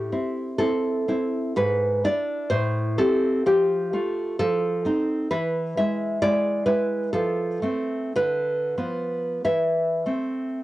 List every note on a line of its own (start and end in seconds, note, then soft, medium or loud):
0.00 0.10 A2 medium
0.00 0.55 G4 medium
0.12 0.58 C4 medium
0.12 0.58 E4 medium
0.58 1.07 C4 medium
0.58 1.08 E4 medium
0.58 1.53 A4 loud
1.08 1.53 C4 medium
1.08 1.53 E4 medium
1.56 2.03 G#2 medium
1.56 2.02 B4 loud
2.04 2.48 D4 medium
2.04 2.48 E4 medium
2.04 2.50 D5 loud
2.50 2.97 A2 medium
2.50 2.96 C5 loud
2.98 3.42 C4 medium
2.98 3.42 G4 medium
2.98 3.44 A4 loud
3.46 3.91 F3 medium
3.46 4.36 G4 loud
3.93 4.36 A3 medium
3.93 4.36 F4 medium
4.39 4.84 F3 medium
4.39 5.27 A4 loud
4.85 5.27 C4 medium
4.85 5.27 D#4 medium
5.31 5.74 E3 medium
5.31 5.73 B4 loud
5.77 6.21 G#3 medium
5.77 6.21 E4 medium
5.77 6.19 E5 medium
6.22 6.65 G#3 medium
6.22 6.65 E4 medium
6.22 6.64 D5 loud
6.66 7.08 G#3 medium
6.66 7.08 E4 medium
6.66 7.10 B4 loud
7.13 7.60 F3 medium
7.13 8.11 A4 loud
7.62 8.11 A3 soft
7.62 8.12 C4 medium
8.15 8.75 D3 medium
8.15 9.40 B4 loud
8.77 9.39 F3 soft
8.77 9.39 B3 medium
9.44 10.04 E3 medium
9.44 10.64 E5 medium
10.06 10.60 A3 soft
10.06 10.60 C4 medium